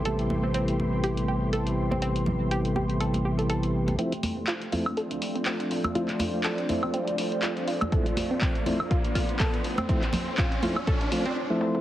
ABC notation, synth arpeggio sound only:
X:1
M:4/4
L:1/16
Q:"Swing 16ths" 1/4=122
K:Dm
V:1 name="Synth arpeggio sound"
A z2 C C z3 G z G z A z2 C | C z3 G z G z A z G A A z3 | C z3 F z F z A z2 C C z3 | F z F z A z2 C C z3 F z F z |
A z2 C C z3 F z F z A z2 C | C z3 F z F z A z2 C z4 |]